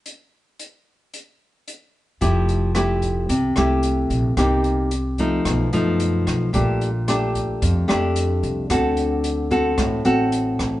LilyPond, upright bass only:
\new Staff \with { instrumentName = "Upright bass" } { \clef bass \time 4/4 \key f \major \tempo 4 = 111 r1 | f,,2 c,8 c,4 bes,,8 | c,2 b,,8 fis,4 b,,8 | bes,,2 f,8 f,4 c,8 |
d,2 a,,8 a,,4 a,,8 | }